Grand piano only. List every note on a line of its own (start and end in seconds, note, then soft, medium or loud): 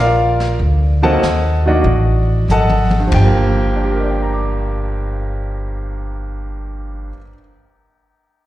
0.00 0.57 F4 medium
0.00 0.57 A#4 medium
0.00 0.57 D5 medium
0.00 0.57 F5 medium
1.03 1.20 D#3 medium
1.03 1.21 F#3 medium
1.03 1.21 A#3 medium
1.03 1.21 C4 medium
1.03 1.63 A4 medium
1.03 1.62 D#5 medium
1.03 1.62 F#5 medium
1.03 1.62 A5 medium
1.66 1.84 D#3 medium
1.66 1.84 F#3 medium
1.66 1.84 A#3 medium
1.66 1.85 D4 medium
1.66 2.46 F#4 medium
1.66 2.46 D5 soft
1.66 2.46 D#5 medium
1.66 2.46 F#5 medium
2.51 3.00 A4 medium
2.51 3.00 D#5 medium
2.51 3.00 F#5 medium
2.51 2.99 A5 medium
2.99 7.08 G2 medium
3.07 7.12 F3 soft
3.14 7.16 G3 soft
3.14 4.09 G5 medium
3.24 7.20 A#3 medium
3.76 7.11 D4 soft
3.84 7.15 G4 soft
3.92 7.19 A#4 soft
4.00 7.23 D5 soft
4.11 7.28 G5 soft
4.22 7.34 A#5 soft
4.34 7.40 D6 soft